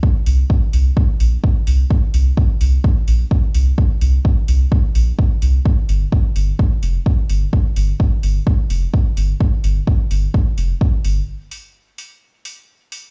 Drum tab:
HH |-o-o-o-o|-o-o-o-o|-o-o-o-o|-o-o-o-o|
BD |o-o-o-o-|o-o-o-o-|o-o-o-o-|o-o-o-o-|

HH |-o-o-o-o|-o-o-o-o|-o-o-o-o|
BD |o-o-o-o-|o-o-o-o-|--------|